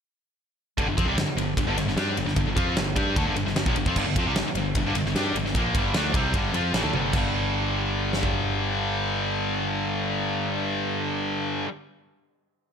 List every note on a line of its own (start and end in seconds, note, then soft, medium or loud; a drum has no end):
0.78 0.86 G1 medium
0.78 0.87 G2 medium
0.78 0.87 D3 medium
0.78 kick loud
0.78 ride medium
0.86 0.96 G1 medium
0.86 0.97 G2 medium
0.86 0.97 D3 medium
0.97 1.04 F2 medium
0.97 1.07 F3 medium
0.97 1.07 C4 medium
0.97 kick loud
0.97 ride medium
1.05 1.15 C2 medium
1.05 1.17 C3 medium
1.05 1.17 G3 loud
1.16 1.25 G1 medium
1.16 1.26 G2 medium
1.16 1.28 D3 medium
1.16 snare loud
1.16 ride loud
1.28 muted distorted electric guitar stroke medium
1.36 1.55 G1 medium
1.36 1.53 G2 medium
1.36 1.53 D3 medium
1.36 ride medium
1.57 1.66 G1 medium
1.57 1.66 G2 medium
1.57 1.66 D3 medium
1.57 kick medium
1.57 ride loud
1.66 1.76 G1 medium
1.66 1.76 G2 medium
1.66 1.77 D3 medium
1.76 1.85 G1 medium
1.76 1.87 G2 medium
1.76 1.87 D3 medium
1.76 ride medium
1.86 1.95 G1 medium
1.86 1.97 G2 medium
1.86 1.98 D3 medium
1.86 snare soft
1.97 2.15 G2 loud
1.97 2.16 G3 medium
1.97 2.16 D4 medium
1.97 2.16 G4 loud
1.97 snare loud
1.97 ride loud
2.17 2.25 G1 medium
2.17 2.25 G2 medium
2.17 2.25 D3 medium
2.17 ride medium
2.25 2.35 G1 medium
2.25 2.34 G2 medium
2.25 2.35 D3 medium
2.25 snare soft
2.36 2.46 G1 medium
2.36 2.45 G2 medium
2.36 2.46 D3 medium
2.36 kick medium
2.36 ride loud
2.46 2.55 G1 medium
2.46 2.56 G2 medium
2.46 2.55 D3 medium
2.55 2.75 F2 loud
2.55 2.75 F3 medium
2.55 2.75 C4 medium
2.55 2.75 F4 loud
2.55 kick loud
2.55 ride medium
2.75 2.94 G1 medium
2.75 2.92 G2 medium
2.75 2.92 D3 medium
2.75 snare loud
2.75 ride loud
2.96 3.14 G2 loud
2.96 3.15 G3 medium
2.96 3.16 D4 loud
2.96 3.16 G4 loud
2.96 kick loud
2.96 ride medium
3.16 3.25 D2 medium
3.16 3.25 D3 medium
3.16 3.26 A3 loud
3.16 kick loud
3.16 ride medium
3.25 3.35 G1 medium
3.25 3.35 G2 medium
3.25 3.35 D3 loud
3.36 3.45 G1 medium
3.36 3.45 G2 medium
3.36 3.46 D3 medium
3.36 ride medium
3.46 3.55 G1 medium
3.46 3.56 G2 medium
3.46 3.56 D3 medium
3.46 snare soft
3.55 3.65 G1 medium
3.55 3.66 G2 medium
3.55 3.66 D3 medium
3.55 snare loud
3.55 ride medium
3.66 3.75 A#1 medium
3.66 3.75 A#2 loud
3.66 3.76 F3 loud
3.66 kick loud
3.76 3.85 G1 medium
3.76 3.86 G2 medium
3.76 3.86 D3 medium
3.76 ride medium
3.86 3.95 F2 loud
3.86 3.96 F3 loud
3.86 3.96 C4 loud
3.86 kick loud
3.96 4.05 G1 medium
3.96 4.06 G2 loud
3.96 4.05 D3 loud
3.96 kick medium
3.96 crash medium
4.07 4.15 G1 medium
4.07 4.16 G2 medium
4.07 4.16 D3 medium
4.16 4.25 F2 loud
4.16 4.26 F3 medium
4.16 4.26 C4 loud
4.16 kick loud
4.16 ride medium
4.26 4.34 C2 loud
4.26 4.35 C3 loud
4.26 4.36 G3 medium
4.35 4.44 G1 medium
4.35 4.46 G2 medium
4.35 4.46 D3 medium
4.35 snare loud
4.35 ride loud
4.48 muted distorted electric guitar stroke medium
4.54 4.73 G1 medium
4.54 4.72 G2 medium
4.54 4.72 D3 medium
4.54 ride medium
4.75 4.83 G1 medium
4.75 4.85 G2 medium
4.75 4.86 D3 medium
4.75 kick loud
4.75 ride loud
4.84 4.94 G1 medium
4.84 4.95 G2 medium
4.84 4.95 D3 loud
4.95 5.04 G1 medium
4.95 5.06 G2 medium
4.95 5.06 D3 medium
4.95 ride medium
5.04 5.14 G1 medium
5.04 5.16 G2 medium
5.04 5.16 D3 medium
5.04 snare soft
5.15 5.33 G2 loud
5.15 5.35 G3 medium
5.15 5.35 D4 loud
5.15 5.35 G4 medium
5.15 snare loud
5.15 ride loud
5.34 5.43 G1 medium
5.34 5.44 G2 medium
5.34 5.45 D3 medium
5.34 ride medium
5.43 5.53 G1 medium
5.43 5.55 G2 medium
5.43 5.55 D3 medium
5.43 snare soft
5.54 5.73 A#1 medium
5.54 5.75 A#2 loud
5.54 5.75 F3 loud
5.54 5.75 A#3 loud
5.54 kick loud
5.54 ride loud
5.74 5.93 G1 medium
5.74 5.95 G2 medium
5.74 5.95 D3 medium
5.74 5.95 G3 medium
5.74 kick loud
5.74 ride medium
5.93 6.13 D2 medium
5.93 6.15 D3 medium
5.93 6.15 A3 loud
5.93 6.15 D4 medium
5.93 snare loud
5.93 ride loud
6.14 6.33 C2 medium
6.14 6.34 C3 medium
6.14 6.35 G3 medium
6.14 6.35 C4 loud
6.14 kick loud
6.14 ride medium
6.34 6.52 G1 medium
6.34 6.54 G2 medium
6.34 6.55 D3 medium
6.34 6.55 G3 loud
6.34 kick loud
6.34 ride loud
6.53 6.72 F2 medium
6.53 6.73 F3 medium
6.53 6.74 C4 medium
6.53 6.75 F4 medium
6.53 ride medium
6.73 6.82 A1 loud
6.73 6.83 A2 medium
6.73 6.84 E3 loud
6.73 snare loud
6.73 ride loud
6.83 6.92 D2 medium
6.83 6.93 D3 medium
6.83 6.94 A3 medium
6.93 7.12 G1 medium
6.93 7.12 G2 medium
6.93 7.13 D3 medium
6.93 7.13 G3 medium
6.93 high tom medium
7.13 11.60 G1 medium
7.13 11.64 G2 medium
7.13 11.67 D3 loud
7.13 kick loud
7.13 crash medium
7.18 11.69 G3 loud
8.13 snare medium
8.23 kick medium